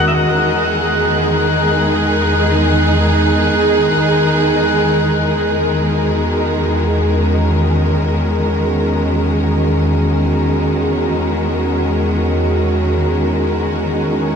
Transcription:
Already playing: string section E2 D#3 G#3 C#4 F#4 A#4, glass harmonica F#6
0.00 pedal steel guitar F#5
0.08 pedal steel guitar E5
0.15 string section D#4, pedal steel guitar F#5
0.33 string section G#4
5.90 string section F#4
7.12 string section C#4

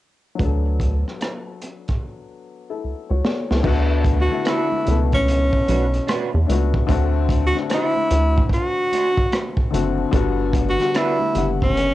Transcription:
0.35 upright piano F#3 B3
0.40 analog synth bass D2, upright piano D4, kick, closed hi-hat
0.45 upright piano A4
0.80 kick, closed hi-hat
1.08 cross-stick
1.21 cross-stick, closed hi-hat
1.62 closed hi-hat
1.88 kick, cross-stick, closed hi-hat
2.70 upright piano E4 A4
2.84 analog synth bass C#2
3.09 analog synth bass C#2, upright piano F#4 C#5
3.24 upright piano A4 D5, snare
3.50 analog synth bass C#2, upright piano E4 A4, snare
3.63 analog synth bass D2, upright piano D3 A3 B3, kick, crash, low conga
3.67 upright piano F#4
4.04 kick, closed hi-hat, high conga
4.21 tenor saxophone F#4
4.29 upright piano D3 A3 B3
4.34 upright piano E4
4.45 clean electric guitar D4 F#4 B4, tenor saxophone E4, cross-stick, closed hi-hat, high conga
4.72 muted conga, high conga
4.85 analog synth bass C#2, upright piano B2 A3 B3, closed hi-hat, low conga
4.90 upright piano A4
5.12 tenor saxophone C#4, kick, cross-stick, closed hi-hat, high conga
5.28 closed hi-hat
5.52 kick, muted conga
5.68 analog synth bass B1, clean electric guitar D4 F#4 B4, closed hi-hat, high conga
5.94 closed hi-hat
6.07 clean electric guitar D4 F#4 B4, cross-stick, closed hi-hat, high conga
6.33 analog synth bass E2, muted conga
6.47 analog synth bass C#2, upright piano A3 B3 D4, closed hi-hat
6.51 upright piano F#4
6.74 kick, low conga
6.87 analog synth bass D2, upright piano D3 A3 C4, kick, closed hi-hat, muted conga, low conga
6.91 upright piano F#4
7.29 kick, closed hi-hat, high conga
7.47 tenor saxophone F#4
7.53 upright piano D3 A3 C4
7.57 upright piano D4, cross-stick
7.70 clean electric guitar D4 F#4 C5, tenor saxophone E4, cross-stick, closed hi-hat, muted conga, high conga
7.97 high conga
8.11 analog synth bass D2, closed hi-hat, low conga
8.37 kick, high conga
8.49 kick, closed hi-hat, muted conga
8.54 tenor saxophone F#4
8.92 clean electric guitar D4 F#4 C5, closed hi-hat, high conga
9.17 kick
9.32 cross-stick, closed hi-hat, high conga
9.57 kick
9.71 analog synth bass F#1, upright piano D3 A3 C4, closed hi-hat
9.75 upright piano F#4
9.98 low conga
10.12 analog synth bass G1, upright piano D3 G3 B3, kick, closed hi-hat, muted conga, low conga
10.16 upright piano F#4
10.40 muted conga
10.53 kick, closed hi-hat, high conga
10.70 tenor saxophone F#4
10.77 upright piano D3 G3 B3, closed hi-hat
10.81 upright piano F#4, cross-stick
10.94 clean electric guitar D4 F#4 B4, tenor saxophone E4, cross-stick, closed hi-hat, muted conga, high conga
11.20 muted conga, high conga
11.33 analog synth bass F#1, upright piano D3 G3 B3, closed hi-hat, low conga
11.38 upright piano F#5
11.60 tenor saxophone C#4, kick, cross-stick, high conga
11.77 closed hi-hat, muted conga

